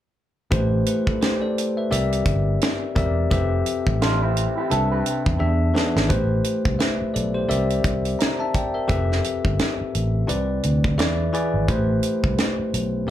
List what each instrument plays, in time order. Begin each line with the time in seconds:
0.51 fingered electric bass A1, tine electric piano A3 E4 G4 B4 C5, kick, closed hi-hat
0.86 tine electric piano E4 B4, closed hi-hat
1.07 tine electric piano E4 A4, kick
1.21 tine electric piano G4 C5, snare, closed hi-hat
1.42 tine electric piano A4 D5
1.58 closed hi-hat
1.77 tine electric piano B4 E5
1.91 fingered electric bass C2, tine electric piano C4 G4 A#4 D5 E5, closed hi-hat
2.12 closed hi-hat
2.25 fingered electric bass G1, kick, closed hi-hat
2.61 snare, closed hi-hat
2.96 fingered electric bass E1, tine electric piano C4 G4 A#4 D5 E5, kick, closed hi-hat
3.31 fingered electric bass F1, tine electric piano F3 C4 G4 A4 B4 E5, kick, closed hi-hat
3.66 closed hi-hat
3.87 fingered electric bass A1, kick
4.02 clean electric guitar D4 F4, snare, closed hi-hat
4.22 clean electric guitar C4 E4
4.37 closed hi-hat
4.58 clean electric guitar E4 G4
4.70 fingered electric bass C2, tine electric piano C3 C4 D4 B4 E5, clean electric guitar A4, closed hi-hat
4.92 clean electric guitar G4 B4
5.06 closed hi-hat
5.26 fingered electric bass E2, kick
5.39 fingered electric bass E2, tine electric piano E3 B3 D4 G#4 E5
5.74 tine electric piano E3 B3 D4 G#4 B4, snare
5.96 fingered electric bass G#1, snare
6.08 fingered electric bass A1, tine electric piano A3 E4 G4 B4 C5, kick, closed hi-hat
6.44 closed hi-hat
6.65 fingered electric bass C2, kick
6.79 tine electric piano B4 E5, snare, closed hi-hat
7.02 muted fingered electric bass stroke
7.14 fingered electric bass B1, tine electric piano A4 D5, closed hi-hat
7.34 tine electric piano G4 C5
7.49 fingered electric bass C2, tine electric piano C4 G4 A#4 D5 E5, closed hi-hat
7.70 closed hi-hat
7.84 fingered electric bass C2, kick, closed hi-hat
8.05 closed hi-hat
8.19 tine electric piano E5 A#5, snare, closed hi-hat
8.40 tine electric piano E5 A5
8.54 tine electric piano D5 G5, kick, closed hi-hat
8.74 tine electric piano A#4 E5
8.88 fingered electric bass F1, tine electric piano F3 C4 G4 A4 B4 E5, kick, closed hi-hat
9.12 snare
9.24 closed hi-hat
9.45 fingered electric bass G1, kick
9.59 snare, closed hi-hat
9.81 muted fingered electric bass stroke
9.95 fingered electric bass A1, closed hi-hat
10.27 fingered electric bass C2, tine electric piano C3 C4 E4 B4 D5, closed hi-hat
10.63 fingered electric bass D2, closed hi-hat
10.84 kick
10.98 fingered electric bass E2, tine electric piano E3 E4 G#4 B4 D5 E5, snare, closed hi-hat
11.33 tine electric piano E3 E4 G#4 B4 D5 G#5, closed hi-hat
11.54 fingered electric bass G#1
11.68 fingered electric bass A1, tine electric piano A3 E4 G4 B4 C5, kick, closed hi-hat
12.03 closed hi-hat
12.24 fingered electric bass C2, kick
12.38 snare, closed hi-hat
12.59 muted fingered electric bass stroke
12.74 fingered electric bass B1, closed hi-hat
13.07 tine electric piano C4